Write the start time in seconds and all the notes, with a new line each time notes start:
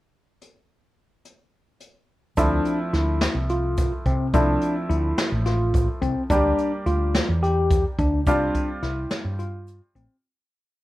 0.41 closed hi-hat
1.25 closed hi-hat
1.80 closed hi-hat
2.37 D2 F3 A3 C4 D4 E4, kick, closed hi-hat, shaker
2.65 closed hi-hat, shaker
2.93 D2 E4, snare, closed hi-hat
3.21 snare, closed hi-hat, shaker
3.35 C2
3.49 F4, closed hi-hat
3.77 kick, closed hi-hat, shaker
4.06 C3 C4, kick, closed hi-hat
4.33 C2 F3 A3 C4 D4 E4, kick, closed hi-hat, shaker
4.61 closed hi-hat, shaker
4.89 D2 E4, closed hi-hat
5.18 snare, closed hi-hat, shaker
5.32 A1
5.46 F4, snare, closed hi-hat
5.74 kick, closed hi-hat, shaker
6.02 C2 C4, kick, closed hi-hat
6.30 D2 G3 A#3 D4 G4, kick, closed hi-hat, shaker
6.58 closed hi-hat, shaker
6.86 D2 F4, closed hi-hat
7.15 snare, closed hi-hat, shaker
7.29 E2
7.43 G4, closed hi-hat
7.70 kick, closed hi-hat, shaker
7.98 D2 D4, kick, closed hi-hat
8.26 C2 G3 C4 D4 F4 G4, kick, closed hi-hat, shaker
8.54 kick, closed hi-hat, shaker
8.83 C2 E4, snare, closed hi-hat
9.11 snare, closed hi-hat, shaker
9.24 G2
9.39 F4, closed hi-hat, shaker
9.67 closed hi-hat, shaker
9.95 A1 C4, closed hi-hat